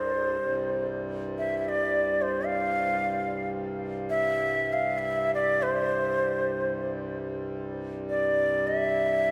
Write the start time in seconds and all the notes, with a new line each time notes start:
Already playing: C2 G2 C5
0.39 C2 G2
1.38 E5
1.58 E5
1.65 D5 E5
2.22 C5
2.46 F5
4.10 E5
4.73 F5
4.98 E5
5.34 D5
5.63 C5
8.10 D5
8.68 E5